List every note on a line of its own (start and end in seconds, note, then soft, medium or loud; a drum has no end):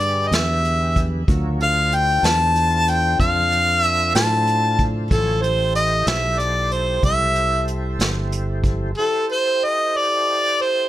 0.00 0.29 G2 medium
0.00 1.23 D3 soft
0.00 1.23 G4 medium
0.00 1.23 G#4 soft
0.00 1.23 B4 soft
0.00 0.29 D5 medium
0.00 closed hi-hat medium
0.28 1.25 E2 medium
0.28 0.36 D#5 medium
0.32 1.05 E5 medium
0.32 snare medium
0.32 closed hi-hat medium
0.65 closed hi-hat soft
0.96 kick medium
0.96 closed hi-hat soft
1.28 2.21 D2 medium
1.28 1.59 F4 soft
1.28 1.61 F#4 soft
1.28 1.60 A#4 soft
1.28 1.60 C#5 medium
1.28 kick medium
1.28 closed hi-hat medium
1.60 5.09 D4 medium
1.60 5.08 F4 medium
1.60 5.09 A4 medium
1.60 5.09 C5 medium
1.60 1.96 F5 medium
1.60 closed hi-hat soft
1.92 2.27 G5 medium
1.92 closed hi-hat medium
2.23 3.16 E2 medium
2.23 2.92 A5 medium
2.23 snare medium
2.23 closed hi-hat medium
2.56 closed hi-hat medium
2.88 3.20 G5 medium
2.88 closed hi-hat soft
3.19 4.12 F2 medium
3.19 3.82 F5 medium
3.19 kick medium
3.19 closed hi-hat medium
3.52 closed hi-hat soft
3.82 4.12 E5 medium
3.82 closed hi-hat soft
4.15 5.08 A2 medium
4.15 4.83 A5 medium
4.15 snare medium
4.15 closed hi-hat medium
4.47 closed hi-hat soft
4.79 kick medium
4.79 closed hi-hat soft
5.10 6.05 A1 medium
5.10 5.43 F4 soft
5.10 5.44 A4 medium
5.10 5.40 C5 soft
5.10 5.44 C#5 soft
5.10 5.43 G#5 soft
5.10 kick medium
5.10 closed hi-hat medium
5.41 8.92 E4 medium
5.41 8.91 G4 medium
5.41 8.92 A4 medium
5.41 8.91 C5 medium
5.41 5.75 C5 medium
5.41 closed hi-hat soft
5.75 6.09 D#5 medium
5.75 closed hi-hat soft
6.07 7.00 B1 medium
6.07 6.41 E5 medium
6.07 snare medium
6.07 closed hi-hat medium
6.39 6.74 D5 medium
6.39 closed hi-hat medium
6.71 7.04 C5 medium
6.71 closed hi-hat soft
7.03 7.96 C2 medium
7.03 7.72 E5 medium
7.03 kick medium
7.03 closed hi-hat medium
7.35 closed hi-hat soft
7.68 closed hi-hat soft
7.99 8.93 G1 medium
7.99 snare medium
7.99 closed hi-hat medium
8.32 closed hi-hat soft
8.64 kick medium
8.64 closed hi-hat soft
8.97 10.89 E4 medium
8.97 10.89 G4 medium
8.97 9.26 A4 medium
8.97 10.89 A4 medium
8.97 10.89 C5 soft
9.32 9.66 C5 medium
9.65 9.99 D#5 medium
9.97 10.63 D5 medium
10.61 10.89 C5 medium